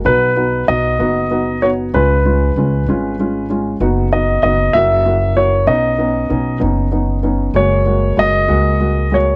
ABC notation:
X:1
M:6/8
L:1/8
Q:3/8=64
K:B
V:1 name="Grand piano"
B2 d3 c | B4- B z | z d d e2 c | d3 z3 |
c2 d3 c |]
V:2 name="Felt piano"
[B,DF] [B,DF] [B,DF] [B,DF] [B,DF] [B,DF] | [G,C^E] [G,CE] [G,CE] [G,CE] [G,CE] [G,CE] | [B,DF] [B,DF] [B,DF] [A,EF] [A,EF] [A,EF] | [B,CD] [B,CD] [B,CD] [B,CD] [B,CD] [B,CD] |
[G,A,F] [G,A,F] [G,A,F] [G,A,F] [G,A,F] [G,A,F] |]
V:3 name="Upright bass" clef=bass
B,,,2 B,,, F,,,3 | C,,2 C,, G,,,3 | F,,,2 F,,, F,,,3 | B,,,2 B,,, F,,,3 |
F,,,2 F,,, C,,3 |]